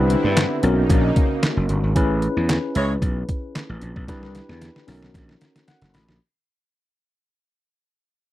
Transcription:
Already playing: C2 D3 B3 C4 D4 E4 G4 B4
0.10 closed hi-hat
0.24 G2
0.37 snare, clap, closed hi-hat
0.63 B1 C#3 A#3 C#4 D#4 F#4 A#4, closed hi-hat
0.90 A#1, kick, closed hi-hat
1.16 kick, closed hi-hat
1.43 snare, clap, closed hi-hat
1.57 F#1
1.69 G1, closed hi-hat
1.83 G#1
1.95 A1 C#4 E4 G#4 B4, kick, closed hi-hat
2.22 closed hi-hat
2.37 E2
2.49 snare, clap, closed hi-hat
2.75 C#2 G#3 E4 C#5, closed hi-hat
3.02 B1, kick, closed hi-hat
3.29 kick, closed hi-hat
3.55 snare, clap, closed hi-hat
3.69 A1
3.82 A#1, closed hi-hat
3.96 B1, kick
4.08 C2 D4 E4 G4 B4, kick, snare, closed hi-hat
4.23 snare
4.35 snare, closed hi-hat
4.49 E2, snare
4.62 snare, closed hi-hat
4.76 snare
4.87 B1 C#4 D#4 F#4 A#4, snare, open hi-hat
5.02 snare
5.14 A#1, kick, snare, closed hi-hat
5.29 snare
5.41 snare, closed hi-hat
5.56 snare, closed hi-hat
5.68 F#5, snare, closed hi-hat
5.82 F#1, snare, closed hi-hat
5.94 A1 B5, snare, open hi-hat
6.08 A#1, snare

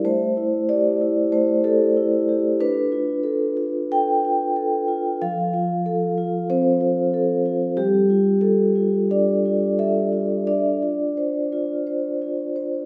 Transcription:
0.05 A3 C5
0.37 E4
0.69 G4 D5
1.01 E4
1.32 A3 C5
1.64 G4 A4
1.97 E4
2.29 G4
2.60 D4 B4
2.92 F4
3.23 A4
3.57 F4
3.92 A4 G5
4.25 F4
4.56 A4
4.88 F4
5.22 F3 F5
5.53 F4
5.86 A4
6.18 F4
6.50 C4 C5
6.81 F4
7.14 A4
7.46 F4
7.77 G3 G4
8.10 F4
8.41 A4
8.76 F4
9.11 D4 D5
9.45 F4
9.79 A4 E5
10.12 F4
10.47 D4 D5
10.82 F4
11.17 C5
11.52 F4
11.87 C5
12.22 F4
12.56 C5

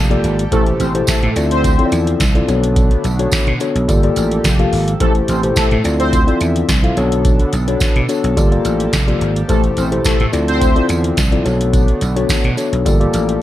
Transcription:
Already playing: F1 F3 A#3 G4 A4
0.10 A#3 F4 G4 A4 D5, closed hi-hat
0.24 G#1, closed hi-hat, tambourine
0.39 closed hi-hat
0.51 A1 B2 A3 E4 G4 A4 C5, kick, closed hi-hat, tambourine
0.66 closed hi-hat
0.80 A1 C4 C5, closed hi-hat, tambourine
0.94 B2 E4 G4 A4 C5, closed hi-hat
1.07 A3 A4, muted slap bass stroke, kick, snare, closed hi-hat, tambourine
1.23 A2 A3 A4, closed hi-hat
1.36 D2 D3 F3 C4 E4 F4 A4 D5 E5, closed hi-hat, tambourine
1.51 C4 C5, closed hi-hat
1.64 kick, closed hi-hat, tambourine
1.79 C4 E4 F4 A4 C#5, closed hi-hat
1.86 D5
1.92 E2, closed hi-hat, tambourine
2.07 closed hi-hat
2.20 C2, kick, snare, closed hi-hat, tambourine
2.35 C4 E4 F4 A4 D5, closed hi-hat
2.48 B1 D3 A3 B3 D4 F#4 A4 C#5, closed hi-hat, tambourine
2.64 closed hi-hat
2.76 kick, closed hi-hat, tambourine
2.91 closed hi-hat
3.04 B1, closed hi-hat, tambourine
3.19 B3 D4 F#4 A4 C#5, closed hi-hat
3.32 muted slap bass stroke, kick, snare, closed hi-hat, tambourine
3.47 B2, closed hi-hat
3.60 B3 D4 F#4 A4 C#5, closed hi-hat, tambourine
3.75 B1, closed hi-hat
3.88 G1 F3 A#3 F4 G4 A4 D5, kick, closed hi-hat, tambourine
4.03 A#3 F4 G4 A4 D5, closed hi-hat
4.16 A1, closed hi-hat, tambourine
4.31 closed hi-hat
4.44 F1, kick, snare, closed hi-hat, tambourine
4.59 A#3 F4 G4 A4 F5, closed hi-hat
4.73 G#1, open hi-hat, tambourine
4.88 closed hi-hat
5.00 A1 B2 A3 E4 G4 A4 C5, kick, closed hi-hat
5.15 closed hi-hat
5.28 A1 C4 C5, closed hi-hat, tambourine
5.43 B2 E4 G4 A4 C5, closed hi-hat
5.56 A3 A4, muted slap bass stroke, kick, snare, closed hi-hat, tambourine
5.71 A2 A3 A4, closed hi-hat
5.84 D2 D3 F3 C4 E4 F4 A4 D5 E5, closed hi-hat, tambourine
5.99 C4 C5, closed hi-hat
6.13 kick, closed hi-hat, tambourine
6.27 C4 E4 F4 A4 D5, closed hi-hat
6.40 E2, closed hi-hat, tambourine
6.56 closed hi-hat
6.69 C2, kick, snare, closed hi-hat, tambourine
6.83 C4 E4 F4 A4 F5, closed hi-hat
6.96 B1 D3 B3 D4 F#4 A4 C#5, closed hi-hat, tambourine
7.12 closed hi-hat
7.25 kick, closed hi-hat, tambourine
7.39 closed hi-hat
7.53 B1, closed hi-hat, tambourine
7.67 B3 D4 F#4 A4 C#5, closed hi-hat
7.80 muted slap bass stroke, kick, snare, closed hi-hat, tambourine
7.96 B2, closed hi-hat
8.08 B3 D4 F#4 A4 C#5, closed hi-hat, tambourine
8.24 B1, closed hi-hat
8.37 G1 F3 A#3 F4 G4 A4 D5, kick, closed hi-hat, tambourine
8.51 A#3 F4 G4 A4 D5, closed hi-hat
8.65 A1, closed hi-hat, tambourine
8.80 closed hi-hat
8.93 F1, kick, snare, closed hi-hat, tambourine
9.07 A#3 F4 G4 A4 D5, closed hi-hat
9.21 G#1, closed hi-hat
9.36 closed hi-hat
9.48 A1 B2 A3 E4 G4 A4 C5, kick, closed hi-hat, tambourine
9.64 closed hi-hat
9.77 A1 C4 C5, closed hi-hat, tambourine
9.91 B2 E4 G4 A4 C5, closed hi-hat
10.05 A3 A4, muted slap bass stroke, kick, snare, closed hi-hat, tambourine
10.20 A2 A3 A4, closed hi-hat
10.32 D2 D3 F3 C4 E4 F4 A4 D5 E5, closed hi-hat, tambourine
10.48 C4 C5, closed hi-hat
10.61 kick, closed hi-hat, tambourine
10.75 C4 E4 F4 A4 D5, closed hi-hat
10.89 E2, closed hi-hat, tambourine
11.04 closed hi-hat
11.17 C2, kick, snare, closed hi-hat, tambourine
11.31 C4 E4 F4 A4 D5, closed hi-hat
11.45 B1 D3 A3 B3 D4 F#4 A4 C#5, closed hi-hat, tambourine
11.61 closed hi-hat
11.73 kick, closed hi-hat, tambourine
11.88 closed hi-hat
12.01 B1, closed hi-hat, tambourine
12.16 B3 D4 F#4 A4 C#5, closed hi-hat
12.29 muted slap bass stroke, kick, snare, closed hi-hat, tambourine
12.44 B2, closed hi-hat
12.57 B3 D4 F#4 A4 C#5, closed hi-hat, tambourine
12.73 B1, closed hi-hat
12.85 G1 F3 A#3 F4 G4 A4 D5, kick, closed hi-hat, tambourine
13.00 A#3 F4 G4 A4 D5, closed hi-hat
13.13 A1, closed hi-hat, tambourine
13.29 closed hi-hat

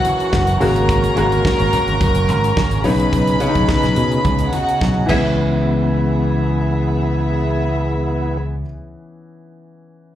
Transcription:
Already playing: C#3 E3 F#3 A#3 C#4 E4 F#4 F#5
0.05 closed hi-hat, high conga
0.20 closed hi-hat
0.33 F#1, kick, snare, muted conga, high conga
0.47 closed hi-hat
0.60 G#1 C#3 G#3 A#3 F#4 A#4 A#5, open hi-hat, low conga
0.76 closed hi-hat
0.89 kick, closed hi-hat, muted conga
1.04 closed hi-hat
1.16 G#1 C#3 G#3 A#3 F#4, closed hi-hat
1.32 closed hi-hat, high conga
1.45 kick, snare, muted conga, high conga
1.60 G#1, closed hi-hat
1.73 closed hi-hat, low conga
1.88 G#1, closed hi-hat
2.01 F#1, kick, closed hi-hat, muted conga, high conga, low conga
2.15 closed hi-hat, muted conga
2.28 G#1, closed hi-hat, high conga
2.44 closed hi-hat
2.57 G#1, kick, snare, muted conga, high conga
2.71 closed hi-hat, muted conga
2.83 B1 C#3 B3 C#4 D#4 B4 B5, open hi-hat, low conga
3.00 closed hi-hat
3.13 B1, kick, closed hi-hat, muted conga
3.27 closed hi-hat, muted conga
3.40 C#3 B3 C#4, closed hi-hat
3.48 D#4
3.55 B1, kick, closed hi-hat, high conga
3.69 kick, snare, muted conga, high conga
3.83 B1, snare, closed hi-hat
3.96 B2, closed hi-hat, low conga
4.12 closed hi-hat
4.25 C#2, kick, closed hi-hat, muted conga, high conga, low conga
4.39 closed hi-hat, muted conga
4.52 F#4 F#5, closed hi-hat, high conga
4.69 closed hi-hat
4.81 B1, kick, snare, muted conga, high conga
5.06 C#2 E3 B3 C#4 E4 G#4 E5, kick, crash, high conga
5.12 E4

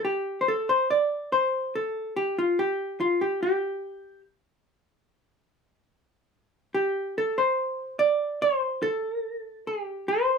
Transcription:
0.05 G4
0.41 C5
0.48 A4
0.69 C5
0.90 D5
1.32 C5
1.75 A4
2.16 G4
2.38 F4
2.59 G4
3.00 F4
3.21 G4
3.43 G4
6.74 G4
7.18 A4
7.38 C5
7.99 D5
8.42 C5
8.82 A4
9.67 G4
10.08 C5

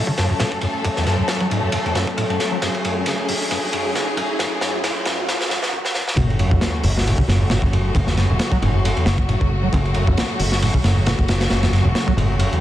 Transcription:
Already playing: F#3 A3 C#4 A4, riser
0.07 C#3, kick
0.18 F#2, snare, ride
0.30 F#2
0.40 A2, snare, ride
0.52 kick
0.61 F#2, ride
0.85 F#2, kick, ride
0.96 E2, snare
1.06 F#2, snare, ride
1.19 F#2
1.28 snare, ride
1.41 F#3, kick
1.50 G#2, ride
1.63 F#2
1.72 F#2, ride
1.85 E2, ride
1.95 F#2, snare, ride
2.07 kick
2.17 A2, ride
2.29 F#2, ride
2.40 snare, ride
2.51 F#3
2.62 F#2 G#4, snare, ride
2.75 ride
2.84 F#2, ride
3.06 F#1, snare, ride
3.29 F#2, open hi-hat
3.51 F#2, snare, ride
3.73 F#2, ride
3.95 F#1, snare, ride
4.17 F#2, ride
4.39 F#2, snare, ride
4.61 F#2, snare, ride
4.83 F#2, snare, ride
5.05 F#2, snare, ride
5.28 F#2, snare, ride
5.40 snare, ride
5.50 F#2, snare, ride
5.63 snare
5.73 F#2
5.85 snare
5.94 F#2, snare
6.08 snare
6.17 F#1 F#2 C#3 F#3 A3 F#4, kick, ride, sub drop
6.30 ride
6.39 F#2, ride
6.51 E1, kick
6.61 F#1, snare, ride
6.84 F#1 F#2, open hi-hat
6.97 snare
7.06 A2, ride
7.18 C#3, kick
7.28 F#1 F#2, snare, ride
7.41 F#2
7.50 A2, snare, ride
7.62 F#1, kick
7.73 F#2, ride
7.95 F#1 F#2, kick, ride
8.07 E2, snare
8.17 F#2, snare, ride
8.30 E1 F#2
8.39 snare, ride
8.52 F#3, kick
8.62 F#1 G#2, ride
8.74 F#2
8.84 F#2, ride
8.96 E2, ride
9.06 F#1 F#2, snare, ride
9.18 kick
9.29 A2, ride
9.41 F#1 F#2, kick
9.63 F#3
9.73 F#1 F#2, kick, ride
9.85 ride
9.94 F#2, ride
10.07 E1, kick
10.17 F#1, snare, ride
10.40 F#1 F#2, open hi-hat
10.52 snare
10.62 A2, ride
10.74 C#3, kick
10.84 F#1 F#2, snare, ride
10.96 F#2
11.06 A2, snare, ride
11.19 F#1, kick
11.28 F#2, snare, ride
11.41 snare, ride
11.50 F#1 F#2, snare, ride
11.63 E2, snare, ride
11.72 F#2, snare, ride
11.85 E1 F#2
11.95 snare, ride
12.07 F#3, kick
12.17 F#1 G#2, ride
12.29 F#2
12.39 F#2, ride
12.52 E2, ride

